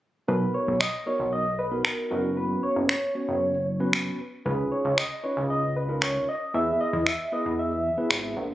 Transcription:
0.28 B1 B3 D#4 F#4 A#4 B4
0.54 C#5
0.68 B1
0.80 D#5, finger snap
1.06 B3 D#4 F#4 A#4 C#5
1.20 B1
1.33 D#5
1.59 B4
1.71 B3 D#4 F#4 A#4
1.85 A#4, finger snap
2.11 F#1 B3 C#4 F#4 A#4 B4
2.37 B4
2.63 C#5
2.76 F#1
2.89 C#5, finger snap
3.15 B3 C#4 F#4 C#5
3.28 F#1
3.80 B3 C#4 F#4 B4
3.93 finger snap
4.45 C#2 C#4 D#4 F4 G#4 B4
4.72 C#5
4.85 C#2
4.98 D#5, finger snap
5.23 C#4 D#4 F4 B4 C#5
5.37 C#2
5.50 D#5
5.76 B4
5.89 C#4 D#4 F4 A#4
6.02 C#5, finger snap
6.29 D#5
6.54 E2 B3 E4 G#4 B4 E5
6.81 D#5
6.93 E2
7.07 E5, finger snap
7.32 B3 E4 G#4 B4 D#5
7.46 E2
7.59 E5
7.98 B3 E4 G#4 B4
8.11 G#1, finger snap
8.37 A#1

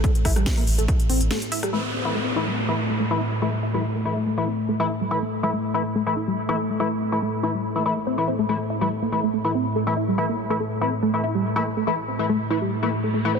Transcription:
Already playing: A2 A3
0.04 A3, kick, closed hi-hat
0.15 closed hi-hat
0.25 A1 E4, kick, cross-stick, open hi-hat
0.36 A1 G3, cross-stick, closed hi-hat
0.46 kick, snare, closed hi-hat
0.57 A#3, open hi-hat
0.67 A1, open hi-hat
0.78 A1 A3, closed hi-hat
0.88 A3, kick, closed hi-hat
1.00 closed hi-hat
1.10 A1 C4, open hi-hat
1.21 A1, closed hi-hat
1.31 A3, snare, closed hi-hat
1.42 closed hi-hat
1.52 E4, open hi-hat
1.63 G3, cross-stick, closed hi-hat
1.73 A2 E3 A3 E4, downlifter
1.94 C4
2.05 E3 A3 E4
2.15 A3
2.36 E3 A3 E4
2.47 G3
2.69 E3 A3 A#3 E4
2.90 A3
3.00 A3
3.11 E3 A3 E4
3.21 C4
3.42 E3 A3 E4
3.63 E4
3.74 E3 G3 A3 E4
3.95 A#3
4.05 E3 A3 E4
4.17 A3
4.26 A3
4.38 E3 A3 E4
4.48 C4
4.69 A3
4.80 E3 A3 E4
4.90 E4
5.01 G3
5.11 E3 A3 E4
5.22 A#3
5.43 E3 A3 E4
5.53 A3
5.74 E3 A3 C4 E4
5.95 A3
6.07 E3 A3 E4
6.17 E4
6.28 G3
6.49 E3 A3 A#3 E4
6.70 A3
6.80 E3 A3 E4
7.01 C4
7.12 E3 A3 E4
7.22 A3
7.43 E3 A3 E4
7.55 G3
7.76 E3 A3 A#3 E4
7.86 E3 A3 E4
7.97 A#3
8.07 C4
8.18 E3 A3 E4
8.28 C4
8.39 A3
8.49 E3 A3 E4
8.70 E4
8.81 E3 G3 A3 E4
9.02 A#3
9.12 E3 A3 E4
9.23 A3
9.34 A3
9.45 E3 A3 E4
9.55 C4
9.76 A3
9.87 E3 A3 E4
9.97 E4
10.08 G3
10.18 E3 A3 E4
10.29 A#3
10.50 E3 A3 E4
10.60 A3
10.81 E3 A3 C4 E4
11.03 A3
11.14 E3 A3 E4
11.24 E4
11.35 G3
11.56 E3 A3 A#3 E4
11.77 A3
11.87 E3 A3 E4, riser
12.08 C4
12.19 E3 A3 E4
12.29 A3
12.50 E3 A3 E4
12.62 G3
12.83 E3 A3 A#3 E4
13.04 A3
13.14 A3
13.25 E3 A3 E4
13.35 C4

